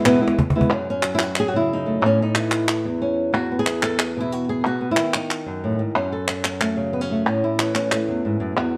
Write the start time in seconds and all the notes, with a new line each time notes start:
0.05 E2 B2 E3 G#3 B3 E4, cajon slap, clap
0.21 E3 G#3 B3 E4
0.28 cajon slap
0.39 muted nylon-string guitar stroke, cajon bass
0.50 cajon bass
0.55 E3 G#3 B3 E4
0.61 cajon bass
0.72 F#2 C#4
0.90 C#4
1.03 F#3, clap
1.15 E4
1.19 F#4, clap
1.36 clap
1.40 G#4
1.48 F#4
1.53 C#3 E4
1.73 D#4
1.86 A3
2.02 A2
2.06 C#4
2.22 D#4
2.35 E3 E4, clap
2.51 clap
2.68 clap
2.85 E2
3.02 C#4
3.33 E2 F#4
3.52 B3
3.59 G#4
3.66 E3, clap
3.83 A4, clap
3.99 G#4, clap
4.17 B2 E4
4.32 F#4
4.49 G#4
4.66 B2 F#4
4.81 B3
4.91 E4
4.97 D#3, clap
5.14 D#4, clap
5.31 clap
5.46 F#2
5.64 A2
5.79 G#2
5.95 F#2 C#4
6.12 A4
6.28 F#3, clap
6.44 C#4, clap
6.61 A3, clap
6.77 C#3
6.93 B3
7.01 C#4
7.11 A3
7.26 A2 C#4
7.44 E4
7.59 E3, clap
7.75 C#4, clap
7.92 A3, clap
8.08 E2
8.25 G#2
8.40 F#2
8.56 E2 F#4